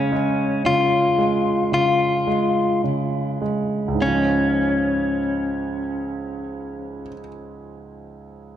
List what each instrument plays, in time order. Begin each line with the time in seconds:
Already playing: grand piano C#3 G#3, clean electric guitar C#4
0.12 grand piano G#3
0.65 grand piano C#3, clean electric guitar F4
1.18 grand piano G#3
1.72 grand piano C#3, clean electric guitar F4
2.27 grand piano G#3
2.84 grand piano C#3
3.42 grand piano G#3
3.88 grand piano C#2
3.95 grand piano G#2
4.01 grand piano C#3, clean electric guitar C#4
4.08 grand piano F3
4.14 grand piano G#3